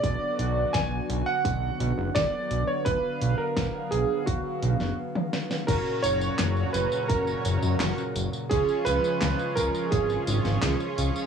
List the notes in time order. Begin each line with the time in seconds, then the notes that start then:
Already playing: D5
0.03 B1 D3 F#3 B3 F#4, kick, closed hi-hat
0.39 B1, closed hi-hat
0.73 B1 G#5, kick, snare, closed hi-hat
1.09 B1, closed hi-hat
1.26 F#5
1.45 B1, kick, closed hi-hat
1.80 B1, closed hi-hat
1.98 F#1
2.15 B1 D5, kick, snare, closed hi-hat
2.50 B1, closed hi-hat
2.67 C#5
2.85 B1 B4, kick, closed hi-hat
3.21 B1, closed hi-hat
3.38 A#4
3.57 B1, kick, snare, closed hi-hat
3.91 B1 G#4, closed hi-hat
4.26 B1 F#4, kick, closed hi-hat
4.63 B1, closed hi-hat
4.80 F#1, snare
5.15 high tom
5.33 snare
5.51 snare
5.67 F#1 A#2 C#3 F#3 C#4 F#4 A#4 C#5 A#5, kick, closed hi-hat, crash, tambourine
5.86 tambourine
6.02 F#1 C#5, closed hi-hat, tambourine
6.21 tambourine
6.39 F#1, snare, clap, closed hi-hat, tambourine
6.57 tambourine
6.73 F#1 B4, closed hi-hat, tambourine
6.92 tambourine
7.08 F#1 A#4, kick, closed hi-hat, tambourine
7.27 tambourine
7.45 F#1, closed hi-hat, tambourine
7.62 F#2, tambourine
7.80 F#1 C#4 F#4 A#4 C#5, snare, clap, closed hi-hat, tambourine
7.98 tambourine
8.15 F#1, closed hi-hat, tambourine
8.33 tambourine
8.49 C#2 F3 G#3 C#4 F4 G#4 C#5, kick, closed hi-hat, tambourine
8.69 tambourine
8.85 C#2 B4, closed hi-hat, tambourine
9.04 tambourine
9.21 C#2, snare, clap, closed hi-hat, tambourine
9.39 tambourine
9.56 C#2 A#4, kick, closed hi-hat, tambourine
9.75 tambourine
9.91 G#1 G#4, kick, closed hi-hat, tambourine
10.10 tambourine
10.27 G#1 C#4 F4 G#4 C#5, closed hi-hat, tambourine
10.45 G#1, snare, tambourine
10.63 C#2, snare, clap, closed hi-hat, tambourine
10.80 tambourine
10.98 C#2, closed hi-hat, tambourine
11.16 tambourine